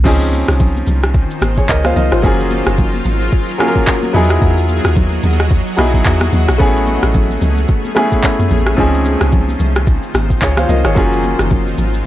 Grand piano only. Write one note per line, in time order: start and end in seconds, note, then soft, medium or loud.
0.04 0.93 F3 medium
0.04 0.93 C4 medium
0.04 0.94 C#4 medium
0.04 0.94 D#4 medium
0.04 0.94 G#4 medium
1.58 1.69 G#4 medium
1.58 1.68 C#5 medium
1.69 1.84 A#4 medium
1.69 1.84 D#5 medium
1.85 1.96 C5 medium
1.85 1.96 F5 medium
1.96 2.12 A#4 medium
1.96 2.11 D#5 medium
2.12 2.23 F4 medium
2.12 2.38 C5 medium
2.22 3.11 F#3 medium
2.22 3.11 A#3 medium
2.22 3.12 C#4 medium
2.22 3.12 F4 medium
2.22 3.13 G#4 medium
3.58 4.11 F#3 medium
3.58 4.14 A#3 medium
3.58 4.15 C#4 medium
3.58 4.15 F4 medium
3.58 3.68 G#4 medium
3.68 4.19 A#4 medium
4.13 5.02 F#3 medium
4.13 5.02 B3 medium
4.13 5.03 D#4 medium
4.13 5.03 E4 medium
4.13 5.03 G#4 loud
5.77 6.45 F#3 medium
5.77 6.45 B3 medium
5.77 6.45 D#4 medium
5.77 6.46 E4 medium
5.77 6.46 G#4 medium
6.58 7.47 A3 medium
6.58 7.48 B3 medium
6.58 7.48 C#4 medium
6.58 7.49 E4 medium
6.58 7.49 G#4 loud
7.95 8.63 A3 medium
7.95 8.63 B3 medium
7.95 8.64 C#4 medium
7.95 8.64 E4 medium
7.95 8.64 G#4 medium
8.77 9.66 F3 medium
8.77 9.66 C4 medium
8.77 9.66 C#4 medium
8.77 9.67 D#4 medium
8.77 9.67 G#4 medium
10.42 10.57 G#4 medium
10.42 10.57 C#5 medium
10.58 10.69 C5 medium
10.58 10.69 F5 medium
10.69 10.84 A#4 medium
10.69 10.84 D#5 medium
10.85 10.96 G#4 medium
10.85 11.11 C#5 medium
10.95 11.84 F#3 medium
10.95 11.84 A#3 medium
10.95 11.85 C#4 medium
10.95 11.85 F4 medium
10.95 11.85 G#4 medium